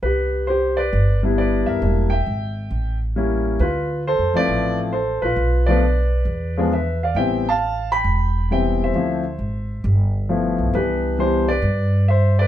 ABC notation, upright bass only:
X:1
M:4/4
L:1/8
Q:"Swing" 1/4=134
K:C
V:1 name="Upright bass" clef=bass
C,,4 G,,,3 _E,, | E,,,2 _A,,,2 =A,,,4 | D,,2- (3D,, F,, _D,, A,,,3 _B,,, | B,,,4 E,,4 |
A,,,4 E,,,4 | D,,2 _A,,,2 G,,,3 B,,, | C,,4 G,,4 |]